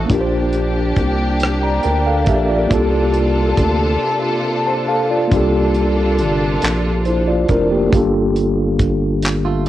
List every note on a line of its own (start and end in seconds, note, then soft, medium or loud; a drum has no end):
0.06 2.65 A#3 medium
0.06 2.66 D4 medium
0.06 closed hi-hat medium
0.10 0.93 A#1 loud
0.10 5.28 A#3 medium
0.10 5.28 D4 medium
0.10 1.38 F4 medium
0.10 2.68 G4 medium
0.10 1.39 G4 medium
0.10 kick loud
0.14 0.19 A#4 medium
0.21 1.43 C5 medium
0.53 closed hi-hat soft
0.96 1.80 C2 medium
0.96 kick medium
0.96 closed hi-hat soft
1.40 cross-stick loud
1.40 closed hi-hat medium
1.63 1.83 D5 soft
1.63 1.83 A#5 medium
1.83 2.29 D2 medium
1.83 2.05 A#4 medium
1.83 2.05 G5 medium
1.83 closed hi-hat soft
2.07 2.27 A4 medium
2.07 2.27 F5 medium
2.26 2.67 A#1 medium
2.26 2.49 G4 medium
2.26 2.48 E5 medium
2.26 kick medium
2.26 closed hi-hat soft
2.50 2.69 F4 medium
2.50 2.91 D5 medium
2.67 5.26 A#3 medium
2.67 5.27 D4 medium
2.67 3.98 F4 medium
2.71 3.54 C2 loud
2.71 5.29 C3 medium
2.71 5.29 F4 medium
2.71 4.00 G4 medium
2.71 5.29 A4 medium
2.71 4.00 A4 medium
2.71 kick loud
2.71 closed hi-hat medium
3.14 closed hi-hat soft
3.57 3.97 D2 medium
3.57 kick medium
3.57 closed hi-hat soft
4.67 4.87 C5 medium
4.67 4.87 A5 medium
4.88 5.09 A4 medium
4.88 5.09 F5 medium
5.11 5.31 F4 medium
5.11 5.52 D5 medium
5.28 7.90 C3 medium
5.28 6.57 A#3 medium
5.28 6.59 D4 medium
5.28 7.90 D4 medium
5.28 7.90 A4 medium
5.32 6.22 C2 medium
5.32 7.90 A#3 medium
5.32 7.90 F4 medium
5.32 6.60 F4 medium
5.32 6.61 G4 medium
5.32 kick loud
5.32 closed hi-hat medium
5.36 6.62 A4 medium
5.75 closed hi-hat soft
6.18 6.59 G1 medium
6.18 closed hi-hat soft
6.62 7.46 A#1 loud
6.62 clap loud
6.62 closed hi-hat medium
7.05 7.27 E4 medium
7.05 7.26 C5 medium
7.05 closed hi-hat soft
7.27 7.48 F4 medium
7.27 7.48 D5 medium
7.48 7.89 F1 loud
7.48 7.70 D4 medium
7.48 7.70 A#4 medium
7.48 kick medium
7.48 closed hi-hat soft
7.71 7.94 A#3 medium
7.71 7.93 G4 medium
7.88 7.97 A3 medium
7.88 9.69 D4 medium
7.93 9.69 G1 loud
7.93 9.69 A#3 medium
7.93 9.69 F4 medium
7.93 9.69 G4 medium
7.93 9.69 A4 medium
7.93 kick loud
7.93 closed hi-hat medium
8.36 closed hi-hat soft
8.79 kick medium
8.79 closed hi-hat medium
9.22 clap loud
9.22 closed hi-hat medium
9.45 9.66 A3 medium
9.45 9.65 F4 medium